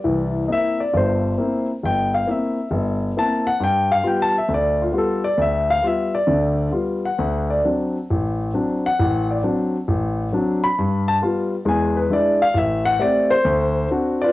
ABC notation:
X:1
M:4/4
L:1/8
Q:"Swing" 1/4=134
K:Ddor
V:1 name="Grand piano"
d z [_e=e] d c3 z | g f e3 z a ^f | g f (3g a e d F A d | e f e d3 z ^f- |
^f d z4 z f- | ^f d z4 z b- | b a z2 ^g B d f | e ^f d c3 z [=FBd] |]
V:2 name="Grand piano"
[C,,E,]2 [_B,CE] z [G,,,G,,]2 [B,CE] z | G,,,2 [_B,CE] z G,,,2 [B,CE] z | G,,2 [G,B,F] z D,,2 [G,B,F] z | D,,2 [G,B,F] z [D,,D,]2 [G,B,F] z |
D,,2 [^F,CD] z A,,,2 [F,CD] z | A,,,2 [^F,CD] z A,,,2 [F,CD] z | G,,2 [G,B,F] z [E,,^G,]2 [G,DE] z | A,,,2 [A,CG] z D,,2 [CD^F] z |]